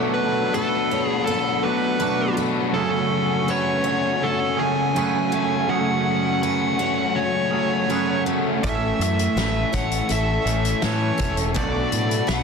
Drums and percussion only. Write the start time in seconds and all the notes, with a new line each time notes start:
8.64 kick, closed hi-hat
9.01 closed hi-hat
9.19 closed hi-hat
9.37 snare, closed hi-hat
9.74 kick, snare, closed hi-hat
9.92 closed hi-hat
10.10 closed hi-hat
10.47 closed hi-hat
10.65 closed hi-hat
10.82 snare, closed hi-hat
11.19 kick, closed hi-hat
11.37 closed hi-hat
11.56 kick, closed hi-hat
11.92 closed hi-hat
12.11 closed hi-hat
12.29 snare, closed hi-hat